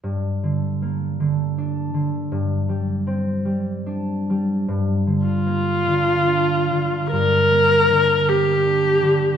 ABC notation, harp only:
X:1
M:4/4
L:1/8
Q:1/4=52
K:Gm
V:1 name="Harp" clef=bass
(3G,, D, B, (3D, D D, (3G,, G, C (3G, D G, | (3G,, D, B, (3D, D D, (3G,, B, D, (3B, D D, |]